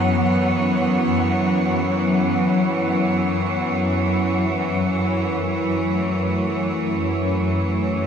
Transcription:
0, 0, Header, 1, 4, 480
1, 0, Start_track
1, 0, Key_signature, 3, "minor"
1, 0, Tempo, 500000
1, 7745, End_track
2, 0, Start_track
2, 0, Title_t, "Synth texture"
2, 0, Program_c, 0, 99
2, 0, Note_on_c, 0, 78, 86
2, 4509, Note_off_c, 0, 78, 0
2, 7745, End_track
3, 0, Start_track
3, 0, Title_t, "Cello section"
3, 0, Program_c, 1, 48
3, 0, Note_on_c, 1, 52, 84
3, 0, Note_on_c, 1, 54, 70
3, 0, Note_on_c, 1, 59, 81
3, 0, Note_on_c, 1, 73, 76
3, 4471, Note_off_c, 1, 59, 0
3, 5580, Note_on_c, 1, 57, 76
3, 7745, Note_off_c, 1, 52, 0
3, 7745, Note_off_c, 1, 54, 0
3, 7745, Note_off_c, 1, 57, 0
3, 7745, Note_off_c, 1, 73, 0
3, 7745, End_track
4, 0, Start_track
4, 0, Title_t, "Synth drone"
4, 0, Program_c, 2, 95
4, 0, Note_on_c, 2, 42, 70
4, 0, Note_on_c, 2, 54, 66
4, 4455, Note_off_c, 2, 42, 0
4, 4458, Note_off_c, 2, 54, 0
4, 4467, Note_on_c, 2, 42, 66
4, 4469, Note_on_c, 2, 54, 65
4, 7745, Note_off_c, 2, 42, 0
4, 7745, Note_off_c, 2, 54, 0
4, 7745, End_track
0, 0, End_of_file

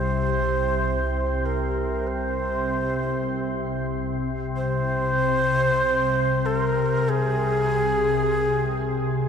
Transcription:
0, 0, Header, 1, 3, 480
1, 0, Start_track
1, 0, Tempo, 500000
1, 8914, End_track
2, 0, Start_track
2, 0, Title_t, "Shakuhachi"
2, 0, Program_c, 0, 77
2, 0, Note_on_c, 0, 72, 110
2, 1397, Note_on_c, 0, 70, 84
2, 1412, Note_off_c, 0, 72, 0
2, 1992, Note_on_c, 0, 72, 109
2, 2006, Note_off_c, 0, 70, 0
2, 3793, Note_off_c, 0, 72, 0
2, 4381, Note_on_c, 0, 72, 127
2, 6199, Note_on_c, 0, 70, 98
2, 6213, Note_off_c, 0, 72, 0
2, 6807, Note_on_c, 0, 68, 126
2, 6822, Note_off_c, 0, 70, 0
2, 8914, Note_off_c, 0, 68, 0
2, 8914, End_track
3, 0, Start_track
3, 0, Title_t, "Synth drone"
3, 0, Program_c, 1, 95
3, 0, Note_on_c, 1, 36, 76
3, 0, Note_on_c, 1, 48, 72
3, 8914, Note_off_c, 1, 36, 0
3, 8914, Note_off_c, 1, 48, 0
3, 8914, End_track
0, 0, End_of_file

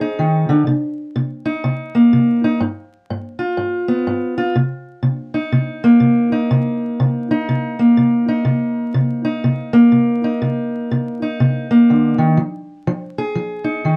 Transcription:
0, 0, Header, 1, 2, 480
1, 0, Start_track
1, 0, Key_signature, -3, "minor"
1, 0, Tempo, 487013
1, 679, Time_signature, 4, 2, 24, 8
1, 13765, End_track
2, 0, Start_track
2, 0, Title_t, "Steel-string acoustic guitar"
2, 0, Program_c, 0, 25
2, 0, Note_on_c, 0, 53, 79
2, 0, Note_on_c, 0, 60, 58
2, 0, Note_on_c, 0, 68, 68
2, 10, Note_on_c, 0, 63, 61
2, 160, Note_off_c, 0, 53, 0
2, 186, Note_on_c, 0, 51, 65
2, 479, Note_off_c, 0, 51, 0
2, 483, Note_on_c, 0, 50, 69
2, 652, Note_off_c, 0, 63, 0
2, 654, Note_off_c, 0, 68, 0
2, 655, Note_off_c, 0, 60, 0
2, 656, Note_off_c, 0, 50, 0
2, 660, Note_on_c, 0, 48, 72
2, 1110, Note_off_c, 0, 48, 0
2, 1139, Note_on_c, 0, 48, 75
2, 1434, Note_on_c, 0, 63, 61
2, 1588, Note_off_c, 0, 48, 0
2, 1615, Note_on_c, 0, 48, 72
2, 1920, Note_on_c, 0, 58, 61
2, 2065, Note_off_c, 0, 48, 0
2, 2099, Note_on_c, 0, 48, 74
2, 2394, Note_off_c, 0, 63, 0
2, 2406, Note_on_c, 0, 63, 61
2, 2545, Note_off_c, 0, 48, 0
2, 2566, Note_on_c, 0, 43, 78
2, 2567, Note_off_c, 0, 63, 0
2, 2584, Note_off_c, 0, 58, 0
2, 3018, Note_off_c, 0, 43, 0
2, 3058, Note_on_c, 0, 43, 74
2, 3340, Note_on_c, 0, 65, 54
2, 3503, Note_off_c, 0, 43, 0
2, 3520, Note_on_c, 0, 43, 72
2, 3826, Note_on_c, 0, 59, 60
2, 3974, Note_off_c, 0, 43, 0
2, 4011, Note_on_c, 0, 43, 74
2, 4301, Note_off_c, 0, 65, 0
2, 4313, Note_on_c, 0, 65, 62
2, 4460, Note_off_c, 0, 43, 0
2, 4474, Note_off_c, 0, 59, 0
2, 4478, Note_off_c, 0, 65, 0
2, 4489, Note_on_c, 0, 48, 70
2, 4939, Note_off_c, 0, 48, 0
2, 4953, Note_on_c, 0, 48, 72
2, 5264, Note_on_c, 0, 63, 54
2, 5411, Note_off_c, 0, 48, 0
2, 5444, Note_on_c, 0, 48, 70
2, 5754, Note_on_c, 0, 58, 61
2, 5897, Note_off_c, 0, 48, 0
2, 5915, Note_on_c, 0, 48, 69
2, 6225, Note_off_c, 0, 63, 0
2, 6229, Note_on_c, 0, 63, 57
2, 6373, Note_off_c, 0, 48, 0
2, 6413, Note_on_c, 0, 48, 75
2, 6863, Note_off_c, 0, 48, 0
2, 6897, Note_on_c, 0, 48, 75
2, 7199, Note_off_c, 0, 63, 0
2, 7203, Note_on_c, 0, 63, 58
2, 7345, Note_off_c, 0, 48, 0
2, 7380, Note_on_c, 0, 48, 71
2, 7676, Note_off_c, 0, 58, 0
2, 7680, Note_on_c, 0, 58, 57
2, 7828, Note_off_c, 0, 48, 0
2, 7857, Note_on_c, 0, 48, 72
2, 8160, Note_off_c, 0, 63, 0
2, 8164, Note_on_c, 0, 63, 57
2, 8307, Note_off_c, 0, 48, 0
2, 8326, Note_on_c, 0, 48, 74
2, 8782, Note_off_c, 0, 48, 0
2, 8814, Note_on_c, 0, 48, 74
2, 9109, Note_off_c, 0, 63, 0
2, 9113, Note_on_c, 0, 63, 57
2, 9267, Note_off_c, 0, 48, 0
2, 9304, Note_on_c, 0, 48, 69
2, 9579, Note_off_c, 0, 58, 0
2, 9591, Note_on_c, 0, 58, 61
2, 9753, Note_off_c, 0, 48, 0
2, 9776, Note_on_c, 0, 48, 67
2, 10088, Note_off_c, 0, 63, 0
2, 10092, Note_on_c, 0, 63, 56
2, 10230, Note_off_c, 0, 48, 0
2, 10266, Note_on_c, 0, 48, 76
2, 10716, Note_off_c, 0, 48, 0
2, 10757, Note_on_c, 0, 48, 76
2, 11056, Note_off_c, 0, 63, 0
2, 11060, Note_on_c, 0, 63, 53
2, 11202, Note_off_c, 0, 48, 0
2, 11237, Note_on_c, 0, 48, 71
2, 11527, Note_off_c, 0, 58, 0
2, 11538, Note_on_c, 0, 58, 57
2, 11683, Note_off_c, 0, 48, 0
2, 11728, Note_on_c, 0, 50, 55
2, 12003, Note_off_c, 0, 50, 0
2, 12007, Note_on_c, 0, 51, 61
2, 12195, Note_on_c, 0, 53, 71
2, 12197, Note_off_c, 0, 51, 0
2, 12203, Note_off_c, 0, 58, 0
2, 12224, Note_off_c, 0, 63, 0
2, 12642, Note_off_c, 0, 53, 0
2, 12687, Note_on_c, 0, 53, 75
2, 12993, Note_on_c, 0, 68, 61
2, 13129, Note_off_c, 0, 53, 0
2, 13162, Note_on_c, 0, 53, 68
2, 13446, Note_on_c, 0, 63, 61
2, 13606, Note_off_c, 0, 53, 0
2, 13648, Note_on_c, 0, 51, 57
2, 13765, Note_off_c, 0, 51, 0
2, 13765, Note_off_c, 0, 63, 0
2, 13765, Note_off_c, 0, 68, 0
2, 13765, End_track
0, 0, End_of_file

